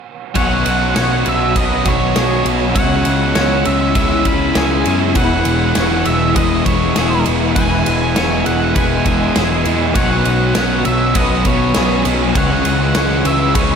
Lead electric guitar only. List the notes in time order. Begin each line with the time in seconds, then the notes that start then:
0.36 F#5
1.29 E5
1.57 D#5
1.89 C#5
2.75 F#5
3.66 E5
3.96 E5
4.27 B5
4.57 G#5
5.15 F#5
6.06 E5
6.35 D#5
6.66 C#5
7.56 G#5
8.46 F#5
8.75 G#5
9.95 F#5
10.85 E5
11.17 D#5
11.47 C#5
12.37 F#5
13.26 E5
13.55 C#5